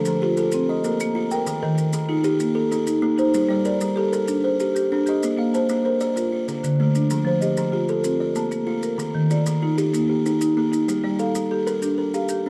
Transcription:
Already playing: A4 C5
0.05 F3, maracas
0.22 F4 G4
0.37 A4, maracas
0.52 C4, maracas
0.69 D#5
0.84 A#3 A#4, maracas
1.00 A#3, maracas
1.15 F4
1.31 A#4 G5, maracas
1.46 D#3, maracas
1.62 D#3 A#4
1.78 A#4, maracas
1.93 D#3, maracas
2.09 D#4 F4
2.24 G4, maracas
2.40 A#3, maracas
2.55 A4
2.72 D#4, maracas
2.87 D#4, maracas
3.03 A#3
3.18 D#4 C5, maracas
3.34 G3, maracas
3.49 G3 D5
3.65 A#4 D5, maracas
3.81 G3, maracas
3.96 G4 A4
4.13 A#4, maracas
4.28 D4, maracas
4.44 C5
4.60 G4, maracas
4.75 G4, maracas
4.92 D4
5.06 G4 D#5, maracas
5.23 A#3, maracas
5.38 A#3 F5
5.54 C5 A5, maracas
5.69 A#3, maracas
5.85 A#4 C5
6.01 D5, maracas
6.16 F4 A#4, maracas
6.32 F4
6.47 D3 C5, maracas
6.63 D3, maracas
6.80 A3
6.95 D4, maracas
7.10 F3, maracas
7.25 F3 C5
7.41 G4 D#5, maracas
7.57 F3, maracas
7.72 F4 G4
7.88 A4, maracas
8.04 C4 F4, maracas
8.20 D5
8.36 A#3 A5, maracas
8.51 A#3, maracas
8.67 F4
8.83 A#4, maracas
8.98 D#3, maracas
9.15 D#3
9.30 F4 D5, maracas
9.46 D#3, maracas
9.62 D#4 F4
9.78 G4, maracas
9.93 A#3 D#4, maracas
10.09 G4
10.26 D#4, maracas
10.41 D#4, maracas
10.57 A#3
10.72 D#4, maracas
10.88 G3, maracas
11.04 G3 D5
11.19 A4 F5, maracas
11.35 G3, maracas
11.51 G4 A4
11.67 A#4, maracas
11.82 D4 G4, maracas
11.98 A#4
12.14 G4 F5, maracas
12.29 G4, maracas
12.46 D4

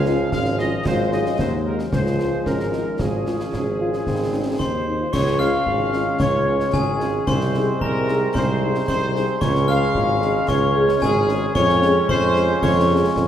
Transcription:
Already playing: C#2 F3 G#3 F5
0.06 G#3 C#4 D#4 F4, snare
0.31 G#1 C#4 F5, concert bass drum, snare
0.45 snare
0.58 G#3 C#4 F4 D#5, snare
0.85 G#1 F#3 G#3 F4 C5, concert bass drum, snare, crash
1.12 G#3 D#4 F#4 D#5, snare
1.26 snare
1.39 D#2 F#3 G#3 D#4 C5, concert bass drum, snare
1.66 G#3 D#4 F#4 A#4
1.79 snare
1.93 C#2 F3 G#3 F4 C5, concert bass drum, snare
2.06 snare
2.19 G#3 C#4 F4, snare
2.45 G#1 C#4 A#4, concert bass drum, snare
2.60 snare
2.73 G#3 C#4 D#4 F4, snare
2.99 G#1 F3 C#4 F4 G#4, concert bass drum, snare
3.26 G#3 C#4 F4, snare
3.40 snare
3.53 G#1 C#4, concert bass drum, snare
3.79 G#3 C#4 F4
3.93 snare
4.06 G#1 D#3 C4 D#4, concert bass drum, snare
4.33 G#3 C4 C#4 D#4
4.59 D#2 D#4 C5 C6, concert bass drum, snare
4.87 G#3 C4 D#4
5.00 F4
5.12 C#2 G#3 C#4 C#5 C#6, concert bass drum, snare, crash
5.27 snare
5.39 G#3 C#4 F4 F5 F6, snare
5.66 G#1, concert bass drum
5.93 G#3 C#4 F4, snare
6.20 C#2 C#5 C#6, concert bass drum, snare
6.47 G#3 C#4 F4
6.60 snare
6.73 G#1 G#4 G#5, concert bass drum, snare
7.00 G#3 C#4 F4, snare
7.27 C2 G#3 C4 C5 C6, concert bass drum, snare, crash
7.41 snare
7.54 G#3 D#4 G#4, snare
7.80 C2 A#4 A#5, concert bass drum
8.08 G#3 D#4 G#4, snare
8.34 C2 C5 C6, concert bass drum, snare
8.61 G#3 D#4 G#4
8.75 snare
8.88 C2 C5 C6, concert bass drum, snare
9.14 G#3 D#4 G#4, snare
9.41 C#2 G#3 C#4 C#5 C#6, concert bass drum, snare, crash
9.55 snare
9.68 G#3 C#4 G#4 F5 F6, snare
9.95 G#1, concert bass drum
10.22 G#3 C#4 G#4, snare
10.48 C#2 C#5 C#6, concert bass drum, snare
10.75 G#3 C#4 G#4
10.89 snare
11.02 G#1 G#4 G#5, concert bass drum, snare
11.28 G#3 C#4 G#4, snare
11.54 F2 G#3 C#4 C#5 C#6, concert bass drum, snare, crash
11.69 snare
11.82 G#3 C#4 G#4, snare
12.09 F2 C5 C6, concert bass drum
12.36 G#3 C#4 G#4, snare
12.62 F2 C#5 C#6, concert bass drum, snare
12.89 G#3 C#4 G#4
13.16 F2, concert bass drum, snare

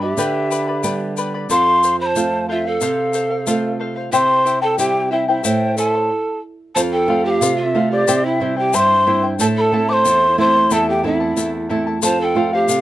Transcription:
Already playing: G2 G3 B3 D4
0.02 G4 B4 D5 E5 B5
0.17 D3 G4 B4 D5 G5 B5, shaker
0.51 B4 D5 G5 B5, shaker
0.67 B4 D5 B5
0.83 G3 B3 D4 B4 D5 G5 B5, shaker
1.17 B4 D5 G5 B5, shaker
1.34 B4 D5 B5
1.49 F2 A4 C5 F5 C6, shaker
1.83 A4 C5 F5, shaker
2.00 C5 F5 B5
2.06 A5
2.15 A3 C4 F4 A4 C5 F5, shaker
2.49 F4 A4 C5 E5 F5
2.65 A4 C5 F5
2.81 C3 A4 C5 F5, shaker
3.13 A4 C5 F5, shaker
3.30 C5 F5
3.47 A3 C4 F4 A4 C5 F5, shaker
3.79 A4 C5 F5
3.96 C5 F5
4.12 C3 E4 G4 C5 E5 G5 C6, shaker
4.45 E4 C5 E5 G5, shaker
4.62 E4 A4 C5 G5 A5
4.78 G3 C4 E4 G4 C5 E5 G5, shaker
5.11 E4 C5 E5 G5
5.28 E4 C5 E5 G5
5.44 A2 E4 A4 C5 E5 G5 A5, shaker
5.77 E4 A4 C5 E5 A5, shaker
5.94 E4 C5 A5
6.75 F2 A4 C5 F5 A5, shaker
6.92 A4 G5
7.07 A3 C4 F4 A4 C5 F5
7.25 G4 C5 F5 G5
7.30 F5
7.41 C3 A4 C5 F5, shaker
7.56 F4 F5
7.63 E5
7.75 A3 C4 F4 A4 C5 F5
7.91 G4 C5 D5 F5
8.08 C3 E4 G4 C5 E5 G5, shaker
8.24 E4 E5
8.40 G3 C4 E4 C5 E5 G5
8.57 E4 G4 C5 G5
8.73 G2 E4 C5 E5 G5 C6, shaker
9.06 G3 C4 E4 C5 E5 G5
9.23 E4 C5 G5
9.39 A2 E4 A4 C5 E5 A5, shaker
9.57 A4 B5
9.61 A5
9.72 A3 C4 E4 A4 E5 A5
9.89 E4 A4 C5 A5 D6
9.93 C6
10.05 E2 E4 A4 E5 A5, shaker
10.38 A3 C4 E4 A4 C5 E5 A5 C6
10.55 E4 A4 A5
10.71 E2 E4 A4 C5 E5 A5, shaker
10.89 G4 G5
11.03 A3 C4 E4 A4 E5 A5
11.20 E4 A4 A5
11.36 E2 E4 A4 E5 A5, shaker
11.69 A3 C4 E4 A4 E5 A5
11.87 E4 A4 A5
12.02 F2 A4 C5 F5 A5, shaker
12.21 A4 G5 A5
12.35 A3 C4 F4 A4 C5 F5
12.53 G4 C5 F5
12.68 C3 A4 C5 F5, shaker

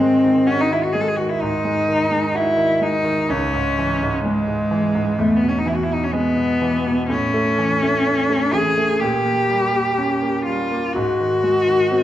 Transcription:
Already playing: G#2 D#3 C4
0.00 G#3
0.23 D#3
0.47 C#4 F#4
0.61 D#4
0.71 D#3 E4
0.83 F#4
0.93 G#3 G#4
1.01 A4
1.08 G#4
1.16 D#3 F#4
1.30 E4
1.41 G#2 D#4
1.64 G#3
1.89 D#3
2.11 G#3
2.35 E4 F#4
2.57 D#3
2.81 G#3 D#4
3.04 D#3
3.29 C#2 C#4
3.54 G#2
3.79 E3
4.03 G#2
4.25 G#3
4.48 G#2
4.71 E3
4.95 G#2
5.19 E2 A3
5.37 B3
5.43 B2
5.49 C#4
5.59 D#4
5.66 E3 E4
5.75 F#4
5.83 E4
5.90 B2 D#4
6.04 C#4
6.13 G#3 B3
6.37 B2
6.62 E3
6.87 B2
7.10 A2 C#4
7.34 A3
7.59 E3
7.83 A3
8.07 C#4
8.30 A3
8.53 E3 G#4
8.78 A3
9.00 A#2 G4
9.25 A#3
9.49 G3
9.73 A#3
9.98 C#4
10.22 A#3
10.46 G3 F4
10.71 A#3
10.93 G#2 F#4
11.20 D#3
11.44 G#3
11.67 D#3
11.92 C4

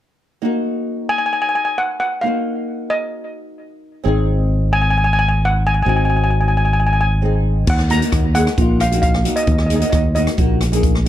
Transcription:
0.42 A#3 D#4 F#4
1.09 G#5
1.18 G#5
1.26 G#5
1.33 G#5
1.42 G#5
1.49 G#5
1.55 G#5
1.65 G#5
1.78 F#5
2.00 F#5
2.21 A#3 D#4 F#4 F5
2.90 D#5
4.04 G#1 C4 D#4 G#4
4.73 G#5
4.82 G#5
4.90 G#5
4.98 G#5
5.04 G#5
5.13 G#5
5.19 G#5
5.29 G#5
5.45 F#5
5.67 G#5
5.74 G#5
5.83 G#1 C4 D#4 F#4 G#5
5.89 G#5
5.96 G#5
6.05 G#5
6.10 G#5
6.16 G#5
6.24 G#5
6.31 G#5
6.41 G#5
6.48 G#5
6.57 G#5
6.65 G#5
6.73 G#5
6.80 G#5
6.87 G#5
6.93 G#5
7.01 G#5
7.22 C4 D#4 G#4
7.67 D#2 F#5, kick, crash
7.79 cross-stick
7.89 A#3 D#4 F#4 A#5, closed hi-hat
8.01 A#3 D#4 F#4, closed hi-hat
8.12 D#2, kick, cross-stick, closed hi-hat
8.35 A#3 D#4 G#4 F#5, closed hi-hat
8.47 cross-stick, closed hi-hat
8.58 A#1 A#3 D#4 F4, kick, closed hi-hat
8.80 F5, cross-stick, closed hi-hat
8.92 A#3 D#4 F#4, closed hi-hat
9.02 F5, kick, closed hi-hat
9.14 cross-stick
9.24 A#3 D#4 F#4, closed hi-hat
9.36 D#5, closed hi-hat
9.43 D#5, closed hi-hat
9.47 D#2, kick
9.52 D#5
9.58 D#5, cross-stick
9.66 A#3 G#4 D#5, closed hi-hat
9.71 D#4
9.76 A#3 D#4 D#5
9.80 F#4 D#5, closed hi-hat
9.90 D#2 D#5, kick, cross-stick, closed hi-hat
9.95 D#5
10.15 A#3 D#4 F#4 D#5, closed hi-hat
10.27 cross-stick, closed hi-hat
10.37 A#1 A#3 D#4 F#4, kick, closed hi-hat
10.61 cross-stick, closed hi-hat
10.72 A#3 D#4 G#4, closed hi-hat
10.83 kick, closed hi-hat
10.95 cross-stick
11.05 A#3 D#4

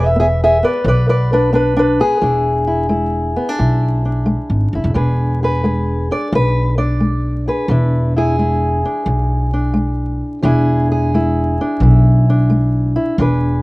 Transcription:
Already playing: E1 E3 B4
0.00 E5
0.16 B3 G#4
0.21 E5
0.44 G#4 E5
0.63 B3 B4 D5
0.84 B1 E3 B4
0.89 D5
1.09 B4 D5
1.33 D4 B4
1.53 B3 D4 B4
1.77 D4 B4
2.00 B3 G#4
2.21 E1 E3 D4 E4
2.67 E4
2.89 G#3 E4
3.36 B3
3.49 D4
3.59 B1 B2 E4
4.05 D4
4.26 G#3
4.50 G#1
4.73 F#1 E4
4.84 E1
4.94 E1 E3 D4 G#4 B4
5.43 G#4 B4
5.64 G#3 G#4
6.11 D4 D5
6.32 B1 B2 B4
6.78 D4 D5
7.00 G#3
7.48 G#4 B4
7.68 E1 E3 D4 E4
8.16 E4 G#4
8.39 G#3 E4
8.85 D4
9.06 B1 B2
9.54 D4
9.74 G#3
10.42 E1 E3 D4 E4 G#4
10.92 G#4
11.14 G#3 E4
11.61 D4
11.80 B1 B2 E4
12.30 D4
12.50 G#3
12.96 E4
13.18 E1 E3 D4 G#4 B4

